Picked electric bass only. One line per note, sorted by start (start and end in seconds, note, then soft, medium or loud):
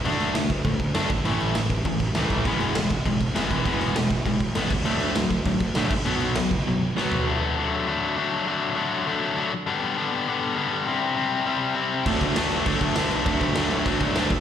0.05 0.15 D2 loud
0.20 0.30 D2 medium
0.35 0.45 D2 medium
0.50 0.60 D2 medium
0.65 0.75 A2 loud
0.80 0.90 D2 medium
0.95 1.05 F#2 medium
1.10 1.20 A1 medium
1.25 1.35 A1 loud
1.41 1.51 A1 medium
1.56 1.66 A1 medium
1.70 1.80 A1 medium
1.85 1.95 E2 medium
2.00 2.10 A1 medium
2.16 2.25 C#2 medium
2.30 2.40 C#2 medium
2.45 2.55 E1 loud
2.61 2.71 E1 medium
2.76 2.86 E1 medium
2.90 3.00 E1 medium
3.05 3.15 B1 loud
3.21 3.31 E1 medium
3.35 3.45 G#1 medium
3.51 3.61 G#1 medium
3.66 3.76 E1 loud
3.81 3.91 E1 medium
3.95 4.05 E1 medium
4.11 4.21 E1 medium
4.26 4.36 B1 loud
4.40 4.50 E1 medium
4.56 4.66 G#1 loud
4.70 4.81 D2 medium
4.85 4.95 D2 loud
5.01 5.11 D2 medium
5.16 5.26 D2 medium
5.30 5.41 D2 loud
5.46 5.56 A2 medium
5.60 5.71 D2 medium
5.75 5.86 A#1 medium
5.91 6.01 B1 medium
6.05 6.16 B1 loud
6.21 6.31 B1 loud
6.37 6.47 B1 loud
6.51 6.61 C#2 loud
12.06 12.17 D2 loud
12.21 12.33 D2 loud
12.36 12.47 D2 loud
12.51 12.62 D2 loud
12.66 12.78 D2 loud
12.81 12.92 D2 loud
12.96 13.08 D2 medium
13.12 13.23 B1 loud
13.26 13.37 D2 loud
13.41 13.52 D2 loud
13.56 13.67 D2 medium
13.71 13.82 D2 loud
13.86 13.97 D2 loud
14.01 14.12 D3 loud
14.16 14.30 D2 loud
14.30 14.40 D2 loud